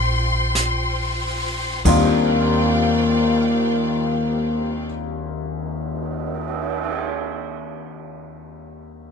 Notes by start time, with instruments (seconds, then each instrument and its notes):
Already playing: upright bass A#1, grand piano C4 D4 F4 G4, string section F4 C5 G5 C6
0.55 brush sweep, snare, hi-hat pedal
1.85 grand piano D#2 D#3 G3 C4 D4 F4, upright bass D#2, string section F4 C5 D5 F5 G5, kick, crash
1.90 trombone A#3
2.75 cymbal swell